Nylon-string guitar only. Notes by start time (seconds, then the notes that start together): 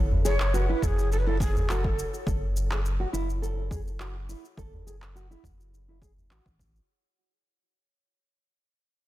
Already playing: A4
0.25 G#4
0.54 F#4
0.69 E4
1.27 E4
1.40 G#4
1.70 F#4
2.27 A4
2.71 G#4
3.00 F#4
3.13 E4
3.42 A4
3.71 G#4
4.00 F#4
4.29 E4
4.58 A4
4.87 G#4
5.15 F#4
5.31 E4
5.88 E4
6.02 G#4
6.31 F#4